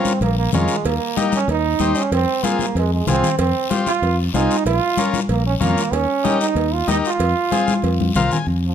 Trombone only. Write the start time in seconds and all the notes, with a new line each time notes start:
Already playing: C4
0.23 A#3
0.39 A#3
0.54 G#3
0.86 A#3
1.35 C#4
1.51 D#4
1.97 C#4
2.13 C4
2.45 A#3
2.79 G#3
2.94 G#3
3.09 C4
3.39 C4
3.88 F4
4.34 D#4
4.67 F4
5.31 A#3
5.47 C#4
5.62 A#3
5.94 C#4
6.41 D#4
6.74 F4
6.91 D#4
7.07 F4
8.67 F3